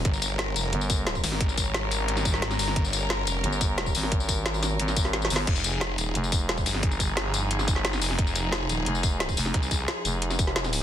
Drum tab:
CC |------------------------------------------------|------------------------------------------------|------------------------------------------------|------------------------------------------------|
HH |x-----x-----x-----x-----x-----x-----x-----o-----|x-----x-----x-----x-----x-----x-----x-----o-----|x-----x-----x-----x-----x-----x-----x-----o-----|x-----x-----x-----x-----x-----x-----x-----o-----|
TB |---x--x-----------x--------x--x--------x--x-----|---x--x-----------x--------x--x--------x--x-----|---x--x-----------x--------x--x--------x--x-----|---x--x--------x--x--------x--x--------x--x-----|
SD |------------o-----------------------o--------o--|------------o--------------o-----o--o--o-----o--|------------o-----------------------o--------o--|------------o-----o--------o-----o--o---o---o---|
BD |o-----------------------------o--------o--------|o-----o-----------------------o-----------------|o-----------------------------o--------o--------|o-----o-----------------------o-----------------|

CC |x-----------------------------------------------|------------------------------------------------|------------------------------------------------|------------------------------------------------|
HH |x-----x-----x-----x-----x-----x-----x-----o-----|x-----x-----x-----x-----x-----x-----x-----o-----|x-----x-----x-----x-----x-----x-----x-----o-----|x-----x-----x-----x-----x-----x-----x-----o-----|
TB |---x--x-----------x--------x--x--------x--x-----|---x--x-----------x--------x--x--------x--x-----|---x--x-----------x--------x--x--------x--x-----|---x--x-----------x--------x--x--------x--x-----|
SD |------------o-----------------------o--------o--|------------o--------------o-----o--o--o-----o--|------------o-----------------------o--------o--|------------o--------------o-----o--o--o--------|
BD |o-----------------------------o--------o--------|o-----o-----------------------o-----------------|o-----------------------------o--------o--------|o-----o-----------------------o-----------------|